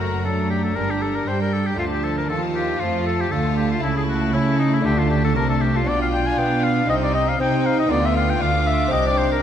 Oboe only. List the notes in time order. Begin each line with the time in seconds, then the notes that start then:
0.00 A#4
0.25 A4
0.50 G4
0.64 A4
0.76 A#4
0.90 G4
1.02 A4
1.16 A#4
1.28 C5
1.41 A#4
1.54 A4
1.66 G4
1.79 F4
1.92 G4
2.04 A4
2.17 A#4
2.29 A4
2.56 G4
2.80 F4
3.06 A4
3.20 G4
3.31 A4
3.57 G4
3.71 F4
3.83 E4
3.97 G#4
4.09 F#4
4.34 E4
4.59 D#4
4.74 E4
4.85 G4
4.99 F4
5.11 G4
5.24 A4
5.36 A#4
5.50 A4
5.61 G4
5.76 F4
5.88 D5
6.02 F5
6.13 G5
6.27 G#5
6.38 G5
6.64 F5
6.90 D#5
7.04 D5
7.15 D#5
7.29 F5
7.41 G5
7.66 F5
7.80 D#5
7.92 D5
8.05 E5
8.17 F5
8.30 G5
8.42 F5
8.67 E5
8.93 D#5
9.07 D5
9.18 C5
9.32 A#4